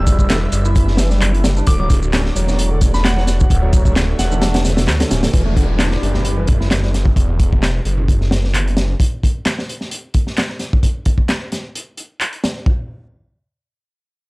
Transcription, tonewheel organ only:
Already playing: G3
0.19 G3
0.30 D3
0.65 E4
0.98 E3
1.11 G3
1.34 E4
1.44 D3
1.57 D4
1.67 D3
1.79 F#3
1.90 C#3
2.13 C#4
2.36 F#3
2.71 D3
2.94 D4
3.16 F#3
3.62 F#3
3.85 F#3
3.96 C#3
4.31 D4
4.64 C#3
4.77 D3
5.00 D3
5.10 C#4
5.23 D3
5.33 E3
5.46 A3
5.56 D3
5.79 D4
6.02 G3
6.37 E3
6.60 E4
6.83 G3

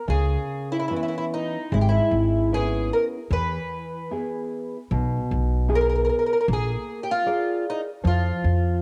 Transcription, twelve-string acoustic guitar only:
0.10 G#4
0.72 E4
0.80 E4
0.88 E4
0.96 E4
1.03 E4
1.08 E4
1.18 E4
1.34 D#4
1.74 E4
1.81 G4
1.89 E4
2.54 G#4
2.93 A#4
3.33 B4
5.75 A#4
5.81 A#4
5.90 A#4
5.95 A#4
6.05 A#4
6.09 A#4
6.19 A#4
6.26 A#4
6.33 A#4
6.41 A#4
6.53 G#4
7.03 G4
7.11 F4
7.70 D#4
8.07 F4

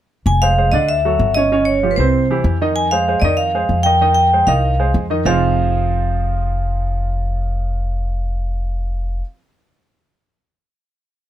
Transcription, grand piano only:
0.42 G#3 G#4 C5
0.58 G#3 G#4 C5
0.73 D3 D4 D5
1.05 F#3 F#4 A4
1.36 C#3 C#4 C#5
1.52 C#3 C#4 C#5
1.83 F3 F4 G4
1.99 C3 C4 C5
2.30 E3 E4 G4
2.61 D#3 D#4 D#5
2.92 G#3 G#4 C5
3.08 G#3 G#4 C5
3.24 D#3 D#4 D#5
3.55 G#3 G#4 C5
3.86 D#3 D#4 D#5
4.01 D#3 D#4 D#5
4.33 G#3 G#4 C5
4.48 D#3 D#4 D#5
4.79 G#3 G#4 C5
5.10 D#3 D#4 D#5
5.26 F3 C4 D#4 F4 G#4 C5

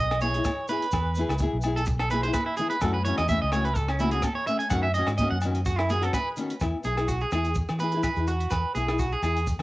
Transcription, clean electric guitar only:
Already playing: D#5
0.22 C#5
0.69 B4
1.76 A4
1.87 muted clean electric guitar stroke
1.99 A4
2.11 B4
2.23 C5
2.33 B4
2.46 E4
2.57 G#4
2.70 B4
2.81 A4
2.94 B4
3.05 C#5
3.18 D#5
3.29 E5
3.42 D#5
3.53 C#5
3.65 B4
3.76 A4
3.89 C#4
4.00 E4
4.12 G#4
4.23 A4
4.35 C#5
4.47 E5
4.59 G#5
4.70 F#5
4.83 E5
4.94 D#5
5.07 muted clean electric guitar stroke
5.18 D#5
5.30 F#5
5.66 F#4
5.78 E4
5.90 G#4
6.03 A4
6.14 B4
6.61 muted clean electric guitar stroke
6.85 G#4
7.08 F#4
7.21 G#4
7.33 G#4
7.80 B4
8.03 B4
8.28 F#4
8.51 B4
8.75 G#4
8.99 F#4
9.13 G#4
9.24 G#4

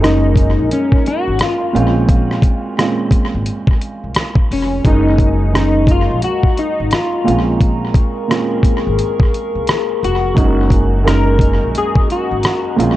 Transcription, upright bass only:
Already playing: F#1
0.59 A#1
1.28 G#1
1.75 A#1
3.34 G#1
4.04 C2
4.51 F1
4.85 F#1
6.11 A#1
6.80 G#1
7.27 A#1
8.87 G#1
9.55 C2
10.03 F1
10.37 F#1
11.63 A#1
12.31 G#1
12.79 A#1

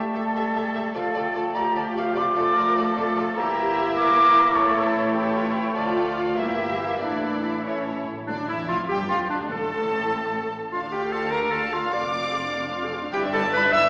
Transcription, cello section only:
0.15 A4
0.95 A4
1.55 G4
2.18 F4
2.38 A4
2.58 A#4
2.78 A4
3.38 G4
3.97 A#4
4.56 A4
5.15 G4
5.35 F4
5.56 E4
5.76 F4
6.38 G4
7.02 E4
8.29 D2
8.51 E2
8.71 F2
8.91 G2
9.11 F2
9.32 D2
9.53 A2
10.74 D2
11.95 F2
13.14 G2
13.73 G2

